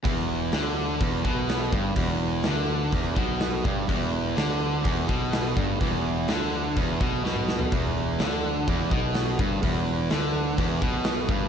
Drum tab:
HH |o---o---o---o---|o---o---o---o---|o---o---o---o---|o---o---o-------|
SD |----o-------o---|----o-------o---|----o-------o---|----o-------o-o-|
T2 |----------------|----------------|----------------|-------------o--|
FT |----------------|----------------|----------------|---------------o|
BD |o-------o-o---o-|o-------o-o---o-|o-------o-o---o-|o-------o-o-----|

HH |o---o---o---o---|o---o---o---o---|
SD |----o-------o---|----o-------o---|
T2 |----------------|----------------|
FT |----------------|----------------|
BD |o-------o-o---o-|o-------o-o---o-|